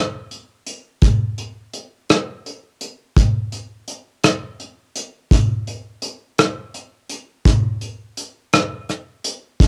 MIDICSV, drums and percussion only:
0, 0, Header, 1, 2, 480
1, 0, Start_track
1, 0, Tempo, 715137
1, 683, Time_signature, 6, 3, 24, 8
1, 6495, End_track
2, 0, Start_track
2, 0, Title_t, "Drums"
2, 209, Note_on_c, 9, 42, 39
2, 277, Note_off_c, 9, 42, 0
2, 447, Note_on_c, 9, 42, 65
2, 514, Note_off_c, 9, 42, 0
2, 683, Note_on_c, 9, 42, 68
2, 686, Note_on_c, 9, 36, 83
2, 750, Note_off_c, 9, 42, 0
2, 753, Note_off_c, 9, 36, 0
2, 926, Note_on_c, 9, 42, 41
2, 993, Note_off_c, 9, 42, 0
2, 1165, Note_on_c, 9, 42, 54
2, 1232, Note_off_c, 9, 42, 0
2, 1407, Note_on_c, 9, 42, 76
2, 1412, Note_on_c, 9, 37, 89
2, 1474, Note_off_c, 9, 42, 0
2, 1479, Note_off_c, 9, 37, 0
2, 1652, Note_on_c, 9, 42, 42
2, 1720, Note_off_c, 9, 42, 0
2, 1886, Note_on_c, 9, 42, 58
2, 1953, Note_off_c, 9, 42, 0
2, 2124, Note_on_c, 9, 42, 61
2, 2125, Note_on_c, 9, 36, 76
2, 2191, Note_off_c, 9, 42, 0
2, 2192, Note_off_c, 9, 36, 0
2, 2365, Note_on_c, 9, 42, 41
2, 2432, Note_off_c, 9, 42, 0
2, 2602, Note_on_c, 9, 42, 50
2, 2669, Note_off_c, 9, 42, 0
2, 2843, Note_on_c, 9, 42, 72
2, 2848, Note_on_c, 9, 37, 84
2, 2910, Note_off_c, 9, 42, 0
2, 2915, Note_off_c, 9, 37, 0
2, 3086, Note_on_c, 9, 42, 36
2, 3153, Note_off_c, 9, 42, 0
2, 3326, Note_on_c, 9, 42, 66
2, 3393, Note_off_c, 9, 42, 0
2, 3564, Note_on_c, 9, 42, 73
2, 3565, Note_on_c, 9, 36, 87
2, 3631, Note_off_c, 9, 42, 0
2, 3632, Note_off_c, 9, 36, 0
2, 3807, Note_on_c, 9, 42, 39
2, 3874, Note_off_c, 9, 42, 0
2, 4040, Note_on_c, 9, 42, 57
2, 4107, Note_off_c, 9, 42, 0
2, 4284, Note_on_c, 9, 42, 70
2, 4289, Note_on_c, 9, 37, 82
2, 4351, Note_off_c, 9, 42, 0
2, 4356, Note_off_c, 9, 37, 0
2, 4525, Note_on_c, 9, 42, 39
2, 4592, Note_off_c, 9, 42, 0
2, 4762, Note_on_c, 9, 42, 66
2, 4829, Note_off_c, 9, 42, 0
2, 5003, Note_on_c, 9, 42, 71
2, 5004, Note_on_c, 9, 36, 88
2, 5070, Note_off_c, 9, 42, 0
2, 5071, Note_off_c, 9, 36, 0
2, 5244, Note_on_c, 9, 42, 42
2, 5311, Note_off_c, 9, 42, 0
2, 5486, Note_on_c, 9, 42, 54
2, 5553, Note_off_c, 9, 42, 0
2, 5725, Note_on_c, 9, 42, 71
2, 5730, Note_on_c, 9, 37, 95
2, 5792, Note_off_c, 9, 42, 0
2, 5797, Note_off_c, 9, 37, 0
2, 5968, Note_on_c, 9, 42, 38
2, 5971, Note_on_c, 9, 37, 26
2, 6035, Note_off_c, 9, 42, 0
2, 6038, Note_off_c, 9, 37, 0
2, 6204, Note_on_c, 9, 42, 70
2, 6271, Note_off_c, 9, 42, 0
2, 6444, Note_on_c, 9, 36, 90
2, 6444, Note_on_c, 9, 42, 77
2, 6495, Note_off_c, 9, 36, 0
2, 6495, Note_off_c, 9, 42, 0
2, 6495, End_track
0, 0, End_of_file